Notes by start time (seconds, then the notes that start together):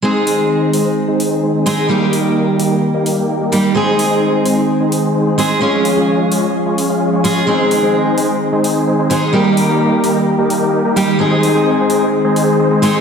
0.02 D#3 G#3 C4 D#4 G#4 C5
0.27 open hi-hat
0.39 G#3 C4 D#4 G#4 C5
0.73 G#3 C4 D#4 G#4 C5, open hi-hat
1.08 G#3 C4 D#4 G#4 C5
1.20 open hi-hat
1.43 G#3 C4 D#4 G#4 C5
1.55 G#3 C4 D#4 G#4 C5
1.66 G#3 C4 D#4 G#4, open hi-hat
1.89 D#3 G3 A#3 D#4 G4 A#4
2.13 open hi-hat
2.25 G3 A#3 D#4 G4 A#4
2.59 G3 A#3 D#4 G4 A#4, open hi-hat
2.94 G3 A#3 D#4 G4 A#4
3.06 open hi-hat
3.29 G3 A#3 D#4 G4 A#4
3.41 G3 A#3 D#4 G4 A#4
3.52 G3 A#3 D#4 G4, open hi-hat
3.75 G#3 C4 D#4 G#4 C5
3.99 open hi-hat
4.11 G#3 C4 D#4 G#4 C5
4.46 G#3 C4 D#4 G#4 C5, open hi-hat
4.80 G#3 C4 D#4 G#4 C5
4.92 open hi-hat
5.15 G#3 C4 D#4 G#4 C5
5.27 G#3 C4 D#4 G#4 C5
5.38 G#3 C4 D#4 G#4, open hi-hat
5.61 F3 G#3 C#4 F4 G#4 C#5
5.85 open hi-hat
5.97 G#3 C#4 F4 G#4 C#5
6.32 G#3 C#4 F4 G#4 C#5, open hi-hat
6.66 G#3 C#4 F4 G#4 C#5
6.78 open hi-hat
6.90 G#3 C#4 F4 G#4 F5
7.13 G#3 C#4 F4 G#4 C#5
7.24 G#3 C#4 F4 G#4, open hi-hat
7.47 D#3 G#3 C4 D#4 G#4 C5
7.71 open hi-hat
7.83 G#3 C4 D#4 G#4 C5
8.18 G#3 C4 D#4 G#4 C5, open hi-hat
8.53 G#3 C4 D#4 G#4 C5
8.64 open hi-hat
8.87 G#3 C4 D#4 G#4 C5
8.99 G#3 C4 D#4 G#4 C5
9.10 G#3 C4 D#4 G#4, open hi-hat
9.33 G3 A#3 D#4 G4 A#4
9.57 open hi-hat
9.69 G3 A#3 D#4 G4 A#4
10.04 G3 A#3 D#4 G4 A#4, open hi-hat
10.39 G3 A#3 D#4 G4 A#4
10.50 open hi-hat
10.73 G3 A#3 D#4 G4 A#4
10.85 G3 A#3 D#4 G4 A#4
10.96 G3 A#3 D#4 G4, open hi-hat
11.19 G#3 C4 D#4 G#4 C5
11.43 open hi-hat
11.55 G#3 C4 D#4 G#4 C5
11.90 G#3 C4 D#4 G#4 C5, open hi-hat
12.25 G#3 C4 D#4 G#4 C5
12.36 open hi-hat
12.60 G#3 C4 D#4 G#4 C5
12.71 G#3 C4 D#4 G#4 C5
12.82 G#3 C4 D#4 G#4, open hi-hat